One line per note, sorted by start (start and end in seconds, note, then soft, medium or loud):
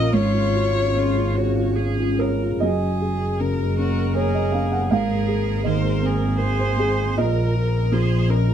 0.00 0.13 A#1 medium
0.00 0.14 C#4 soft
0.00 2.61 C#4 medium
0.00 0.14 F4 soft
0.00 0.14 F#4 soft
0.00 0.11 A#4 medium
0.00 0.14 A#4 medium
0.00 0.14 A#4 soft
0.00 0.14 C#5 soft
0.00 0.14 D#5 medium
0.00 2.61 F5 medium
0.12 2.61 G#1 medium
0.12 2.58 G#2 soft
0.12 0.86 F4 soft
0.12 2.61 G#4 medium
0.12 1.77 C#5 medium
0.34 0.66 F4 soft
0.55 0.75 F#4 soft
0.75 1.07 F4 soft
0.94 1.28 C#4 soft
0.94 1.37 F4 soft
1.16 1.48 F4 soft
1.35 1.77 F#4 medium
1.35 1.69 C#5 soft
1.57 1.89 F4 soft
1.76 2.11 C#4 soft
1.76 2.21 G#4 medium
1.99 2.33 F4 soft
2.19 2.58 A#4 medium
2.19 2.61 A#4 soft
2.19 2.54 C#5 soft
2.43 2.62 F4 soft
2.60 4.91 F#1 soft
2.60 4.87 F#2 soft
2.60 7.14 A#3 medium
2.60 7.14 G#4 medium
2.60 3.41 G#4 soft
2.60 4.87 C#5 medium
2.60 4.11 D#5 medium
3.01 3.62 G#4 soft
3.39 4.00 C#3 soft
3.39 4.87 A#4 medium
3.39 3.78 A#4 soft
3.78 4.38 C#4 soft
3.78 4.15 F#4 soft
4.15 4.90 G#4 soft
4.15 4.76 A#4 soft
4.15 4.33 C#5 medium
4.35 4.52 D#5 medium
4.52 4.91 C#4 soft
4.52 4.70 F5 medium
4.72 4.89 F#5 medium
4.89 7.20 G#1 soft
4.89 7.14 G#2 soft
4.89 5.67 G#4 medium
4.89 5.65 A#4 soft
4.89 7.17 C5 medium
4.89 5.61 F5 medium
5.28 5.87 G#4 soft
5.64 6.24 D#3 soft
5.64 6.39 A#4 soft
5.64 6.07 C5 soft
5.64 6.54 D#5 medium
6.02 6.62 C4 soft
6.02 7.19 G#4 soft
6.38 7.02 A#4 soft
6.38 7.19 C5 medium
6.59 6.77 C5 medium
6.77 7.17 C4 soft
6.77 7.16 G#4 medium
7.17 8.54 A#1 medium
7.17 8.54 A#2 medium
7.17 8.54 A#3 medium
7.17 8.54 C#4 medium
7.17 8.54 F4 medium
7.17 7.95 A#4 medium
7.17 8.54 D#5 medium
7.92 8.52 F3 soft
7.92 8.31 G#4 soft
7.92 8.32 C5 soft
8.29 8.54 C#4 soft
8.29 8.54 A#4 medium